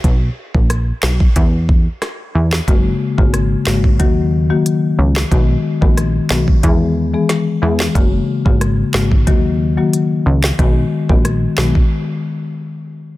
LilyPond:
<<
  \new Staff \with { instrumentName = "Marimba" } { \time 4/4 \key b \major \tempo 4 = 91 r1 | <cis gis ais fis'>16 r8 <cis gis ais fis'>8. <cis gis ais fis'>8 <dis fis ais fis'>16 r8 <dis fis ais fis'>16 r4 | <dis gis b fis'>16 r8 <dis gis b fis'>16 r8 <dis gis b fis'>16 r16 <e gis b gis'>16 r8 <e gis b gis'>16 r8 <e gis b gis'>16 r16 | <cis gis ais fis'>16 r8 <cis gis ais fis'>8. <cis gis ais fis'>8 <dis fis ais fis'>16 r8 <dis fis ais fis'>16 r4 |
<dis gis b fis'>16 r8 <dis gis b fis'>16 r8 <dis gis b fis'>16 r2 r16 | }
  \new Staff \with { instrumentName = "Analog synth bass" } { \clef bass \time 4/4 \key b \major b,,8 r16 ais,,8. b,,8 e,4 r8 e,8 | fis,,8 r16 gis,,8. gis,,8 dis,4 r8 cis,8 | b,,8 r16 ais,,8. b,,8 e,4 r8 e,8 | fis,,8 r16 gis,,8. gis,,8 dis,4 r8 cis,8 |
b,,8 r16 ais,,8. b,,8 r2 | }
  \new DrumStaff \with { instrumentName = "Drums" } \drummode { \time 4/4 <hh bd>8. bd16 <hh ss>8 <hc sn>16 bd16 <hh bd>8 bd8 <hh ss sn>8. <hc sn>16 | <hh bd>8. bd16 <hh ss>8 <hc sn>16 bd16 <hh bd>4 hh8. <hc sn>16 | <hh bd>8. bd16 <hh ss>8 <hc sn>16 bd16 <hh bd>4 <hh sn>8. <hc sn>16 | <hh bd>8. bd16 <hh ss>8 <hc sn>16 bd16 <hh bd>4 hh8. <hc sn>16 |
<hh bd>8. bd16 <hh ss>8 <hc sn>16 bd16 r4 r4 | }
>>